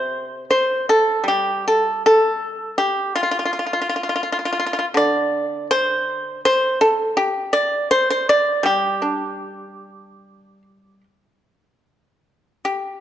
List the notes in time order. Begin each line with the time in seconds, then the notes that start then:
Already playing: C3 C5
0.51 C5
0.89 A4
1.24 G3
1.28 G4
1.68 A4
2.06 A4
2.78 G4
3.16 F4
3.23 F4
3.31 F4
3.39 F4
3.45 F4
3.53 F4
3.59 F4
3.67 F4
3.73 F4
3.81 F4
3.89 F4
3.96 F4
4.03 F4
4.09 F4
4.16 F4
4.23 F4
4.32 F4
4.39 F4
4.45 F4
4.53 F4
4.59 F4
4.66 F4
4.73 F4
4.79 F4
4.94 D3 D5
5.71 C5
6.45 C5
6.81 A4
7.17 G4
7.53 D5
7.91 C5
8.10 C5
8.29 D5
8.63 G3 G4
9.02 D4
12.65 G4